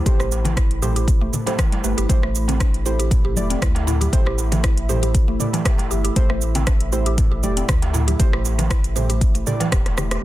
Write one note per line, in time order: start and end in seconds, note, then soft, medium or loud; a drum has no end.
0.00 10.19 A3 medium
0.00 10.19 E4 medium
0.00 2.08 C5 medium
0.00 10.19 B5 medium
0.06 1.28 A1 loud
0.06 0.80 A3 medium
0.06 0.80 G4 medium
0.06 0.80 C5 loud
0.06 kick loud
0.06 closed hi-hat medium
0.06 muted conga soft
0.06 high conga loud
0.06 shaker medium
0.20 0.30 G4 medium
0.20 cross-stick medium
0.20 shaker soft
0.32 darbuka ka medium
0.32 shaker loud
0.45 0.51 E3 loud
0.45 closed hi-hat soft
0.45 muted conga soft
0.45 high conga medium
0.45 darbuka tek medium
0.45 low conga medium
0.45 shaker soft
0.57 0.70 E4 medium
0.57 kick loud
0.57 cross-stick loud
0.57 closed hi-hat medium
0.57 shaker medium
0.71 closed hi-hat soft
0.82 1.30 A3 medium
0.82 1.30 G4 medium
0.82 0.90 G4 medium
0.82 1.30 C5 medium
0.82 high conga medium
0.82 darbuka dum medium
0.82 shaker medium
0.96 1.02 G4 medium
0.96 closed hi-hat soft
0.96 muted conga soft
0.96 high conga medium
0.96 shaker soft
1.08 kick loud
1.08 closed hi-hat medium
1.08 shaker medium
1.21 1.32 A3 medium
1.33 muted conga soft
1.33 darbuka dum medium
1.33 low conga medium
1.33 shaker loud
1.46 1.81 A3 medium
1.46 1.53 E4 medium
1.46 1.81 G4 medium
1.46 1.81 C5 medium
1.46 closed hi-hat soft
1.46 darbuka ka loud
1.46 high conga medium
1.46 shaker soft
1.59 1.71 E3 medium
1.59 kick loud
1.59 cross-stick loud
1.59 closed hi-hat soft
1.59 darbuka tek medium
1.59 shaker medium
1.72 1.83 G3 loud
1.72 closed hi-hat soft
1.72 muted conga medium
1.72 darbuka ka loud
1.84 1.94 G1 medium
1.84 1.96 A3 medium
1.84 2.07 A3 medium
1.84 2.07 G4 medium
1.84 2.07 B4 medium
1.84 shaker medium
1.98 2.06 G1 loud
1.98 2.08 G4 loud
1.98 closed hi-hat soft
1.98 shaker soft
2.09 3.38 A1 loud
2.09 2.83 A3 loud
2.09 2.83 G4 medium
2.09 2.83 C5 loud
2.09 10.22 E5 medium
2.09 kick loud
2.09 closed hi-hat medium
2.09 muted conga medium
2.09 high conga medium
2.09 shaker medium
2.23 2.34 A3 medium
2.23 cross-stick medium
2.35 shaker medium
2.48 2.59 C4 medium
2.48 closed hi-hat soft
2.48 muted conga soft
2.48 darbuka tek medium
2.48 high conga medium
2.48 low conga medium
2.48 shaker soft
2.60 2.68 D4 medium
2.60 kick loud
2.60 cross-stick loud
2.60 closed hi-hat medium
2.60 shaker medium
2.74 closed hi-hat soft
2.86 3.34 A3 medium
2.86 2.98 E4 medium
2.86 3.34 G4 medium
2.86 3.34 C5 medium
2.86 shaker medium
2.99 3.06 G4 medium
2.99 closed hi-hat soft
2.99 muted conga soft
2.99 high conga medium
2.99 shaker soft
3.10 kick loud
3.10 closed hi-hat medium
3.10 darbuka dum medium
3.10 shaker medium
3.25 3.35 G4 medium
3.36 3.56 E1 medium
3.36 4.10 A3 medium
3.36 4.10 G4 medium
3.36 4.10 D5 medium
3.36 muted conga soft
3.36 high conga loud
3.36 shaker medium
3.50 3.61 C4 medium
3.50 closed hi-hat soft
3.50 darbuka tek medium
3.50 shaker soft
3.62 4.08 D2 medium
3.62 3.75 E4 medium
3.62 kick loud
3.62 cross-stick loud
3.62 closed hi-hat medium
3.62 low conga medium
3.62 shaker soft
3.75 closed hi-hat soft
3.75 muted conga medium
3.75 darbuka tek medium
3.87 4.00 E4 medium
3.87 darbuka ka loud
3.87 darbuka dum medium
3.87 shaker medium
4.01 4.07 G4 medium
4.01 closed hi-hat soft
4.01 high conga medium
4.01 shaker soft
4.13 5.35 A1 loud
4.13 4.86 A3 loud
4.13 4.86 G4 medium
4.13 4.86 C5 loud
4.13 kick loud
4.13 closed hi-hat medium
4.13 muted conga medium
4.13 high conga medium
4.13 shaker soft
4.26 4.37 G4 medium
4.26 cross-stick medium
4.38 darbuka ka medium
4.38 shaker medium
4.52 4.58 E3 loud
4.52 closed hi-hat soft
4.52 muted conga soft
4.52 darbuka tek medium
4.52 high conga medium
4.52 low conga medium
4.52 shaker soft
4.64 4.77 E4 medium
4.64 kick loud
4.64 cross-stick loud
4.64 closed hi-hat medium
4.64 shaker soft
4.77 closed hi-hat soft
4.89 5.37 A3 medium
4.89 4.97 G4 medium
4.89 5.37 G4 medium
4.89 5.37 C5 medium
4.89 high conga medium
4.89 darbuka dum medium
4.89 shaker medium
5.02 5.09 G4 medium
5.02 closed hi-hat soft
5.02 muted conga medium
5.02 high conga medium
5.02 shaker soft
5.15 kick loud
5.15 closed hi-hat medium
5.15 shaker soft
5.28 5.39 A3 medium
5.40 6.14 A3 medium
5.40 6.13 G4 medium
5.40 6.14 D5 medium
5.40 muted conga soft
5.40 low conga medium
5.40 darbuka dum medium
5.40 shaker medium
5.53 5.60 E3 loud
5.53 closed hi-hat soft
5.53 darbuka ka loud
5.53 high conga medium
5.53 shaker soft
5.65 5.78 G4 medium
5.65 kick loud
5.65 cross-stick loud
5.65 closed hi-hat medium
5.65 darbuka tek medium
5.65 shaker soft
5.78 closed hi-hat soft
5.78 muted conga medium
5.78 darbuka ka loud
5.91 6.10 G1 medium
5.91 5.98 G4 medium
5.91 shaker medium
6.04 6.11 G4 medium
6.04 closed hi-hat soft
6.04 shaker soft
6.16 7.45 A1 loud
6.16 6.90 A3 loud
6.16 6.90 G4 medium
6.16 6.90 C5 loud
6.16 kick loud
6.16 closed hi-hat medium
6.16 muted conga soft
6.16 high conga medium
6.16 shaker soft
6.30 6.40 A3 medium
6.30 cross-stick medium
6.42 shaker medium
6.55 6.66 C4 medium
6.55 closed hi-hat soft
6.55 muted conga soft
6.55 high conga medium
6.55 darbuka tek medium
6.55 low conga medium
6.55 shaker soft
6.67 6.74 D4 medium
6.67 kick loud
6.67 cross-stick loud
6.67 closed hi-hat medium
6.67 shaker soft
6.80 closed hi-hat soft
6.92 7.41 A3 medium
6.92 7.05 E4 medium
6.92 7.41 G4 medium
6.92 7.41 C5 medium
6.92 shaker medium
7.06 7.13 G4 medium
7.06 closed hi-hat soft
7.06 muted conga soft
7.06 high conga medium
7.06 shaker soft
7.18 kick loud
7.18 closed hi-hat medium
7.18 darbuka dum medium
7.18 shaker soft
7.32 7.42 G4 medium
7.43 7.62 E1 medium
7.43 8.17 A3 medium
7.43 8.17 G4 medium
7.43 8.17 D5 medium
7.43 muted conga soft
7.43 high conga loud
7.43 shaker medium
7.57 7.68 C4 medium
7.57 closed hi-hat soft
7.57 darbuka tek medium
7.57 shaker soft
7.69 8.14 D2 medium
7.69 7.82 E4 medium
7.69 kick loud
7.69 cross-stick loud
7.69 closed hi-hat medium
7.69 low conga medium
7.69 shaker soft
7.82 closed hi-hat soft
7.82 muted conga soft
7.82 darbuka tek medium
7.94 8.06 E4 medium
7.94 darbuka ka loud
7.94 darbuka dum loud
7.94 shaker medium
8.08 8.14 G4 medium
8.08 closed hi-hat soft
8.08 high conga medium
8.08 shaker soft
8.20 9.42 A1 loud
8.20 8.93 A3 loud
8.20 8.93 G4 medium
8.20 8.93 C5 loud
8.20 kick loud
8.20 closed hi-hat medium
8.20 muted conga medium
8.20 high conga medium
8.20 shaker soft
8.33 8.44 G4 medium
8.33 cross-stick medium
8.45 darbuka ka medium
8.45 shaker medium
8.58 8.65 E3 loud
8.58 closed hi-hat soft
8.58 muted conga soft
8.58 darbuka tek medium
8.58 high conga medium
8.58 low conga medium
8.58 shaker soft
8.70 8.83 E4 medium
8.70 kick loud
8.70 cross-stick loud
8.70 closed hi-hat medium
8.70 shaker soft
8.84 closed hi-hat soft
8.84 shaker soft
8.96 9.44 A3 medium
8.96 9.44 G4 medium
8.96 9.03 G4 medium
8.96 9.44 C5 medium
8.96 high conga medium
8.96 darbuka dum medium
8.96 low conga medium
8.96 shaker medium
9.10 9.16 G4 medium
9.10 closed hi-hat soft
9.10 muted conga medium
9.10 high conga medium
9.10 shaker soft
9.21 kick loud
9.21 closed hi-hat medium
9.21 shaker medium
9.35 9.46 A3 medium
9.35 closed hi-hat soft
9.35 shaker soft
9.46 10.20 A3 medium
9.46 10.20 G4 medium
9.46 10.20 D5 medium
9.46 muted conga soft
9.46 darbuka dum loud
9.46 low conga medium
9.46 shaker medium
9.60 9.67 E3 loud
9.60 closed hi-hat soft
9.60 darbuka ka loud
9.60 darbuka tek medium
9.60 high conga medium
9.60 shaker soft
9.72 10.18 E1 medium
9.72 9.84 G4 medium
9.72 kick loud
9.72 cross-stick loud
9.72 closed hi-hat medium
9.72 darbuka tek medium
9.72 shaker soft
9.86 cross-stick medium
9.86 closed hi-hat soft
9.86 muted conga medium
9.86 darbuka ka loud
9.86 high conga medium
9.97 10.05 G4 medium
9.97 cross-stick medium
9.97 low conga medium
9.97 shaker medium
10.11 10.18 G4 medium
10.11 cross-stick medium
10.11 closed hi-hat soft
10.11 shaker soft